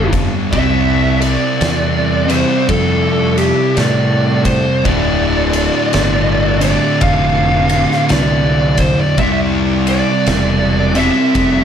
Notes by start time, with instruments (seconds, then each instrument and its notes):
Already playing: fingered electric bass F1, distorted electric guitar G2 D3 G3
0.13 kick, ride
0.51 fingered electric bass C2, distorted electric guitar C3 G3 C4, lead electric guitar E5, kick, ride
1.21 lead electric guitar D5, ride
1.61 fingered electric bass E2, snare, ride
2.28 distorted electric guitar C3 G3 C4, lead electric guitar C5, ride
2.69 fingered electric bass F2, lead electric guitar A4, kick, ride
3.37 lead electric guitar G4, ride
3.76 fingered electric bass A2, lead electric guitar D5, snare, ride
4.44 lead electric guitar C5, kick, ride
4.84 fingered electric bass D1, distorted electric guitar D2 A2 D3, lead electric guitar D5, kick, ride
5.53 ride
5.93 fingered electric bass G1, snare, ride
6.61 distorted electric guitar D2 A2 D3, lead electric guitar D5, ride
7.01 fingered electric bass F1, lead electric guitar F5, kick, ride
7.69 ride
7.91 snare
8.09 fingered electric bass C2, lead electric guitar D5, snare, ride
8.78 lead electric guitar C5, kick, ride
8.99 lead electric guitar D5
9.18 fingered electric bass C2, distorted electric guitar C3 G3 C4, lead electric guitar E5, kick, ride
9.87 lead electric guitar D5, ride
10.26 fingered electric bass E1, snare, ride
10.95 distorted electric guitar C3 G3 C4, lead electric guitar E5, ride
11.35 fingered electric bass F1, kick, ride